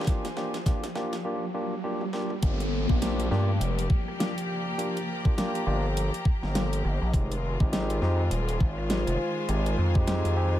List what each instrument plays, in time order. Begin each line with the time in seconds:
Already playing: string section F3 D#4 F4 G#4 C5 G#5, riser
0.01 snare
0.04 kick, snare
0.07 tine electric piano A#3 D4 F4 G4, snare, closed hi-hat
0.25 snare, closed hi-hat
0.37 tine electric piano A#3 D4 F4 G4, snare
0.54 snare, closed hi-hat
0.66 tine electric piano A#3 D4 F4 G4, kick, snare, closed hi-hat
0.84 snare, closed hi-hat
0.95 tine electric piano A#3 D4 F4 G4, snare
1.13 snare, closed hi-hat
1.25 tine electric piano A#3 D4 F4 G4
1.54 tine electric piano A#3 D4 F4 G4
1.84 tine electric piano A#3 D4 F4 G4
2.01 high tom
2.13 tine electric piano A#3 D4 F4 G4, snare
2.30 mid tom
2.42 analog synth bass G1, string section F3 A#3 G4, tine electric piano A#3 D4 F4 G4, kick, closed hi-hat, downlifter
2.60 closed hi-hat
2.70 string section D5
2.89 analog synth bass A#1, tine electric piano A#3 D4 F4 G4, kick
3.02 tine electric piano A#3 D4 F4 G4, snare, closed hi-hat
3.20 closed hi-hat
3.31 analog synth bass G2, tine electric piano A#3 D4 F4 G4, snare
3.47 string section G5, cross-stick
3.60 analog synth bass F1, closed hi-hat
3.79 closed hi-hat
3.90 kick
4.08 cross-stick
4.19 tine electric piano A#3 D4 F4 G4, string section A#5, snare, closed hi-hat
4.38 closed hi-hat
4.78 tine electric piano A#3 D4 F4 G4, closed hi-hat
4.97 closed hi-hat
5.25 tine electric piano A#3 D4 F4 G4, kick
5.38 tine electric piano A#3 D4 F4 G4, snare, closed hi-hat
5.55 closed hi-hat
5.67 analog synth bass G1, tine electric piano A#3 D4 F4 G4
5.85 cross-stick
5.97 closed hi-hat
6.14 closed hi-hat
6.25 kick, cross-stick
6.43 analog synth bass G1, snare
6.55 tine electric piano A#3 D4 F4 G4, snare, closed hi-hat
6.73 closed hi-hat
6.85 analog synth bass G1, cross-stick
7.02 analog synth bass A#1
7.13 analog synth bass F1, string section D#3 G#3 F4, tine electric piano G#3 C4 D#4 G4, kick, closed hi-hat
7.32 closed hi-hat
7.38 string section G#5
7.60 analog synth bass G#1, tine electric piano G#3 C4 D#4 G4, kick
7.72 tine electric piano G#3 C4 D#4 G4, string section C5, snare, closed hi-hat
7.90 closed hi-hat
8.02 analog synth bass F2, tine electric piano G#3 C4 D#4 G4, snare
8.19 cross-stick
8.31 analog synth bass D#1, closed hi-hat
8.49 closed hi-hat
8.60 analog synth bass G#1, kick
8.78 cross-stick
8.90 tine electric piano G#3 C4 D#4 G4, snare, closed hi-hat
9.07 analog synth bass F1, closed hi-hat
9.48 analog synth bass G#1, tine electric piano G#3 C4 D#4 G4, closed hi-hat
9.66 closed hi-hat
9.78 analog synth bass F2
9.95 tine electric piano G#3 C4 D#4 G4, kick
10.07 tine electric piano G#3 C4 D#4 G4, snare, closed hi-hat
10.25 analog synth bass F2, closed hi-hat
10.37 tine electric piano G#3 C4 D#4 G4
10.54 cross-stick